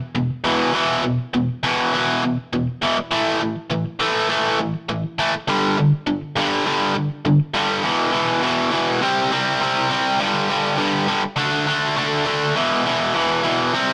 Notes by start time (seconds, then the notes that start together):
0.15 E2 B2
0.44 E2 B2 E3
0.73 E2 B2 E3
1.03 E2 B2
1.33 E2 B2
1.63 E2 B2 E3
1.93 E2 B2 E3
2.23 E2 B2
2.53 E2 B2
2.82 E2 B2 E3
3.11 A2 E3 A3
3.40 A2 E3
3.70 A2 E3
3.99 A2 E3 A3
4.29 A2 E3 A3
4.59 A2 E3
4.89 A2 E3
5.19 A2 E3 A3
5.48 G2 D3 G3
5.78 G2 D3
6.07 G2 D3
6.36 G2 D3 G3
6.65 G2 D3 G3
6.94 G2 D3
7.25 G2 D3
7.54 G2 D3 G3
7.83 E2 B2 E3
8.12 E2 B2 E3
8.42 E2 B2 E3
8.71 E2 B2 E3
9.01 C3 G3 C4
9.31 C3 G3 C4
9.60 C3 G3 C4
9.90 C3 G3 C4
10.19 G2 D3 G3
10.49 G2 D3 G3
10.77 G2 D3 G3
11.08 G2 D3 G3
11.36 D3 A3 D4
11.67 D3 A3 D4
11.96 D3 A3 D4
12.25 D3 A3 D4
12.55 E2 B2 E3
12.85 E2 B2 E3
13.14 E2 B2 E3
13.43 E2 B2 E3
13.73 C3 G3 C4